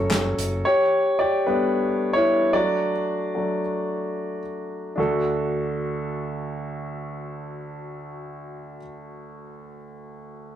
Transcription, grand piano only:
Already playing: F#3 A3 C#4 F#4 A4 C#5
0.65 G4 C#5
1.19 G4 D5
1.46 G3 A3 B3 D4 B4
2.13 E4 C#5
2.53 F#3 A3 D4 F#4 D5
3.35 F#3 A3 D4
4.96 D2 D4 F#4
5.00 A4

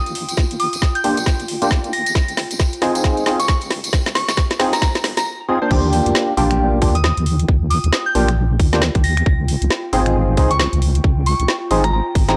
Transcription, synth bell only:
0.60 D#6
0.95 G6
1.93 A#6
3.39 C#6
3.48 C#6
4.15 C#6
4.73 A#5
4.82 A#5
5.17 A#5
6.95 D#6
7.04 D#6
7.70 D#6
8.06 G6
9.04 A#6
10.51 C#6
10.60 C#6
11.26 C#6
11.84 A#5
11.93 A#5
12.29 A#5

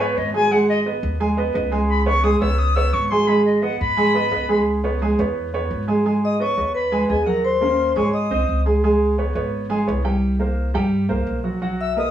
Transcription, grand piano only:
0.00 B3 B4 C#5
0.34 G#3 G#4 G#5
0.51 G#3 G#4 G#5
0.86 B3 B4 D#5
1.20 G#3 G#4 G#5
1.37 B3 B4 D#5
1.54 B3 B4 D#5
1.72 G#3 G#4 G#5
2.06 B3 B4 C#5
2.23 G#3 G#4 G#5
2.41 B3 B4 C#5
2.76 B3 B4 C#5
3.11 G#3 G#4 G#5
3.28 G#3 G#4 G#5
3.62 B3 B4 D#5
3.97 G#3 G#4 G#5
4.14 B3 B4 D#5
4.31 B3 B4 D#5
4.49 G#3 G#4 G#5
4.84 B3 B4 C#5
5.02 G#3 G#4 G#5
5.19 B3 B4 C#5
5.54 B3 B4 C#5
5.88 G#3 G#4 G#5
6.05 G#3 G#4 G#5
6.39 B3 B4 D#5
6.57 B3 B4 D#5
6.92 G#3 G#4 G#5
7.09 B3 B4 D#5
7.26 F#3 F#4 F#5
7.61 A#3 C#4 A#4
7.96 G#3 G#4 G#5
8.31 C4 C5 D#5
8.66 G#3 G#4 G#5
8.84 G#3 G#4 G#5
9.18 B3 B4 C#5
9.35 B3 B4 C#5
9.70 G#3 G#4 G#5
9.87 B3 B4 C#5
10.04 G3 G4 G5
10.39 A#3 A#4 C5
10.74 G3 G4 G5
11.09 A#3 A#4 C5
11.44 F#3 F#4 F#5
11.62 F#3 F#4 F#5
11.96 A#3 A#4 B4

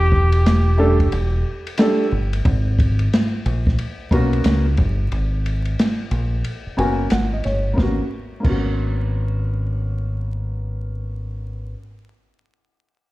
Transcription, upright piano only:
0.77 G3 A3 D4 A4
1.78 G3 A3 D4 A4
4.11 A#3 B3 C#4 F#4
6.77 A#3 B3 C#4 F#4 G#5
7.11 F#5
7.33 D#5
7.45 C#5
7.73 A#3 B3
7.79 C#4 F#4
8.40 A#3 B3
8.46 C#4 F#4

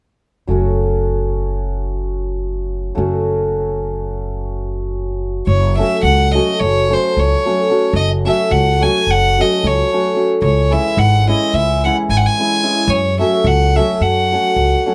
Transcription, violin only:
5.47 C#5
5.78 E5
6.04 F#5
6.35 D#5
6.60 C#5
6.93 C5
7.19 C#5
7.96 D#5
8.27 E5
8.51 F#5
8.82 G#5
9.11 F#5
9.41 D#5
9.67 C#5
10.43 C#5
10.72 E5
10.98 F#5
11.30 D#5
11.55 E5
11.85 F#5
12.10 G#5
12.17 F#5
12.26 G#5
12.90 C#5
13.21 E5
13.47 F#5
13.76 E5
14.02 F#5

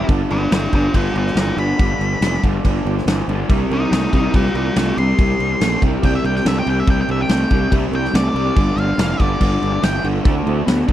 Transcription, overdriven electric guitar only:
0.09 G2 D3
0.52 G2 E3
0.73 G2 D3
0.94 G2 D3
1.37 G2 E3
1.58 G2 D3
1.78 G2 D3
2.22 G2 E3
2.44 G2 D3
2.65 G2 D3
3.08 G2 E3
3.29 G2 D3
3.50 C3 G3
3.93 C3 A3
4.13 C3 G3
4.34 C3 G3
4.77 C3 A3
4.99 C3 G3
5.19 C3 G3
5.61 C3 A3
5.83 C3 G3
6.04 C3 G3
6.45 C3 A3
6.67 C3 G3
6.88 C3 G3
7.29 C3 A3
7.50 C3 G3
7.71 C3 G3
8.14 C3 A3
8.35 C3 G3
8.56 G2 D3
8.98 G2 E3
9.20 G2 D3
9.40 G2 D3
9.82 G2 E3
10.04 G2 D3
10.25 D3 A3
10.66 D3 B3
10.88 D3 A3

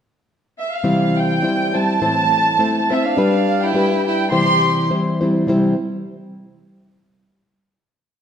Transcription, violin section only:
0.59 E5
0.72 F5
1.17 G5
1.76 A5
2.92 E5
3.05 F5
3.62 G5
4.07 G5
4.32 C6

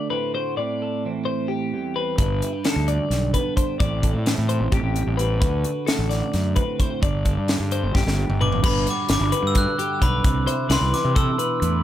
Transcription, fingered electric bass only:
2.18 G1
2.76 D2
3.10 B1
3.80 A1
4.14 A2
4.38 A2
4.61 A1
4.72 A1
4.83 A1
5.07 A1
5.42 D2
5.99 A1
6.34 F#2
7.03 G1
7.37 G2
7.60 G2
7.83 G1
7.95 G1
8.06 G1
8.29 G1
8.64 G1
9.09 G1
9.21 G1
9.43 G2
10.02 B1
10.24 C2
10.70 C2
10.81 C2
11.05 C3
11.62 E2

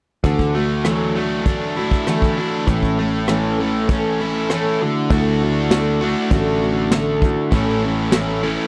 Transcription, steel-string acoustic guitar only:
0.24 D3 E3 A3 D4 F#4
0.54 A3 D4 F#4
0.85 D3 E3 A3 D4 F#4
1.15 A3 D4 F#4
1.46 E3 A3 D4 F#4
1.77 A3 D4 F#4
2.07 D3 E3 A3 D4 F#4
2.37 A3 D4 F#4
2.67 A2 E3 A3 C#4 A4
2.99 A3 C#4 A4
3.28 A2 E3 A3 C#4 A4
3.58 A3 C#4 A4
3.89 E3 A3 C#4 A4
4.20 A3 C#4 A4
4.51 A2 E3 A3 C#4 A4
4.81 A3 E4 F#4
5.10 D3 A3 E4 F#4
5.41 A3 E4 F#4
5.71 D3 A3 E4 F#4
6.01 A3 E4 F#4
6.32 D3 A3 E4 F#4
6.62 A3 E4 F#4
6.92 D3 A3 E4 F#4
7.23 A3 E4 F#4
7.53 A2 E3 A3 C#4 A4
7.83 A3 C#4 A4
8.14 E3 A3 C#4 A4
8.44 A3 C#4 A4

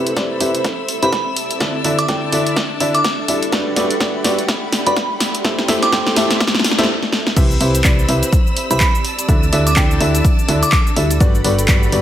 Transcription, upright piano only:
0.17 C3 E4 G4 B4 C5 D5
0.41 C3 E4 G4 B4 C5 E5
1.03 C3 E4 G4 B4 C5 E5
1.61 D3 D4 E4 A4 D5 E5
1.84 D3 D4 E4 A4 D5 E5
2.08 D3 D4 E4 A4 D5 G5
2.32 D3 D4 E4 A4 D5 E5
2.81 D3 D4 E4 A4 D5 E5
3.28 G3 D4 E4 A4 D5 E5
3.53 G3 D4 F#4 G4 B4 D5
3.77 G3 D4 F#4 G4 B4 D5
4.01 G3 D4 F#4 G4 B4 D5
4.25 G3 D4 F#4 G4 B4 D5
4.87 G3 D4 F#4 G4 B4 D5
5.45 A3 E4 G4 A4 C5 E5
5.69 A3 E4 G4 A4 C5 E5
5.93 A3 E4 G4 A4 C5 G5
6.17 A3 E4 G4 A4 C5 E5
6.79 A3 E4 G4 A4 C5 E5
7.37 C3 E4 G4 B4 C5 E5
7.61 C3 E4 G4 B4 C5 E5
7.85 C3 E4 G4 B4 C5 D5
8.09 C3 E4 G4 B4 C5 E5
8.71 C3 E4 G4 B4 C5 E5
9.29 D3 D4 E4 A4 D5 E5
9.53 D3 D4 E4 A4 D5 E5
9.77 D3 D4 E4 A4 D5 G5
10.01 D3 D4 E4 A4 D5 E5
10.49 D3 D4 E4 A4 D5 E5
10.97 G3 D4 E4 A4 D5 E5
11.21 G3 D4 F#4 G4 B4 D5
11.45 G3 D4 F#4 G4 B4 D5
11.69 G3 D4 F#4 G4 B4 D5
11.93 G3 D4 F#4 G4 B4 D5

